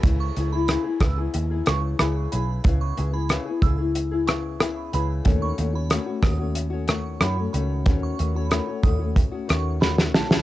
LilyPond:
<<
  \new Staff \with { instrumentName = "Synth bell" } { \time 4/4 \key cis \minor \tempo 4 = 92 r16 cis'''16 r16 b''8 r16 e'''16 r8. cis'''16 r16 b''16 r16 b''16 r16 | r16 cis'''16 r16 b''8 r16 e'''16 r8. cis'''16 r16 b''16 r16 b''16 r16 | r16 cis'''16 r16 b''8 r16 dis'''16 r8. cis'''16 r16 b''16 r16 b''16 r16 | r16 cis'''16 r16 b''8 r16 dis'''16 r8. cis'''16 r16 b''16 r16 a''16 r16 | }
  \new Staff \with { instrumentName = "Nylon-string guitar" } { \time 4/4 \key cis \minor <cis b e' gis'>8 <cis b e' gis'>16 <b e' gis'>16 <cis b e' gis'>16 <b e' gis'>16 <cis b e' gis'>16 <b e' gis'>8 <b e' gis'>16 <cis b e' gis'>8 <cis b e' gis'>8 <cis b e' gis'>8 | <cis b e' gis'>8 <cis b e' gis'>16 <b e' gis'>16 <cis b e' gis'>16 <b e' gis'>16 <cis b e' gis'>16 <b e' gis'>8 <b e' gis'>16 <cis b e' gis'>8 <cis b e' gis'>8 <cis b e' gis'>8 | <dis a cis' fis'>8 <dis a cis' fis'>16 <a cis' fis'>16 <dis a cis' fis'>16 <a cis' fis'>16 <dis a cis' fis'>16 <a cis' fis'>8 <a cis' fis'>16 <dis a cis' fis'>8 <dis a cis' fis'>16 <a cis' fis'>16 <dis a cis' fis'>8 | <dis a cis' fis'>8 <dis a cis' fis'>16 <a cis' fis'>16 <dis a cis' fis'>16 <a cis' fis'>16 <dis a cis' fis'>16 <a cis' fis'>8 <a cis' fis'>16 <dis a cis' fis'>8 <dis a cis' fis'>8 <dis a cis' fis'>8 | }
  \new Staff \with { instrumentName = "Picked electric bass" } { \clef bass \time 4/4 \key cis \minor cis,8 cis,8. r16 cis,8 dis,8 cis,8 cis,8 b,,8 | cis,8 cis,8. r16 cis,2 cis,8 | dis,8 dis,8. r16 dis,4. fis,8 cis,8 | dis,8 dis,8. r16 dis,8. r16 dis,4 b,,8 | }
  \new DrumStaff \with { instrumentName = "Drums" } \drummode { \time 4/4 <hh bd>8 hh8 <hh ss>8 <hh bd ss>8 hh8 <hh ss>8 <hh ss>8 hh8 | <hh bd>8 hh8 <hh ss>8 <hh bd>8 hh8 <hh ss>8 <hh ss>8 hh8 | <hh bd>8 hh8 <hh ss>8 <hh bd ss>8 hh8 <hh ss>8 <hh ss>8 hh8 | <hh bd>8 hh8 <hh ss>8 <hh bd>8 <hh bd>8 <hh ss>8 sn16 sn16 sn16 sn16 | }
>>